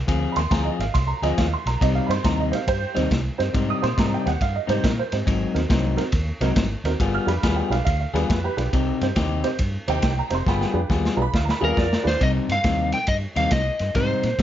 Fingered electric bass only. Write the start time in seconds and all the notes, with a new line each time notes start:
0.08 D2
0.36 D#2
0.51 D2
0.79 G#1
0.95 C2
1.22 D2
1.37 D#2
1.66 B1
1.81 C2
2.09 G2
2.25 D#2
2.67 G2
2.97 D#2
3.11 C2
3.40 G2
3.54 G#2
3.83 A#2
3.98 G#2
4.26 D#2
4.41 G2
4.69 G#2
4.84 A#2
5.13 G#2
5.27 G#1
5.55 D#2
5.70 C2
6.13 D#2
6.41 C2
6.56 G#1
6.84 D#2
7.00 G1
7.27 F2
7.43 D#2
7.70 B1
7.87 D2
8.13 D#2
8.30 F2
8.57 B1
8.73 C2
9.01 G2
9.16 D#2
9.59 G2
9.88 D#2
10.03 C2
10.31 F1
10.46 G1
10.74 F2
10.90 D#2
11.17 B1
11.33 D2
11.62 D#2
11.78 F2
12.05 D#2
12.21 C2
12.49 G2
12.65 D#2
13.08 G2
13.36 D#2
13.51 C2
13.80 G2
13.95 G#2
14.24 A#2
14.39 G#2